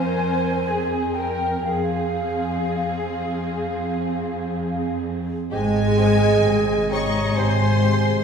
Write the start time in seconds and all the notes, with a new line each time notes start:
Already playing: F2 C4 A#4 C5 G#5
0.67 G#4
1.14 A#4 G5
1.64 F2 C4 G#4 F5
5.51 G#1 G#2 C3 G#3 C4 G4 G#4 D#5 G#5
5.98 C4 G4
6.44 G#1 G#2 C4 G4
6.91 C4 G4 C#5 D#5 A#5 C#6
7.36 G#1 G#2 C4 G4 C5 G#5 C6
7.83 C4 G4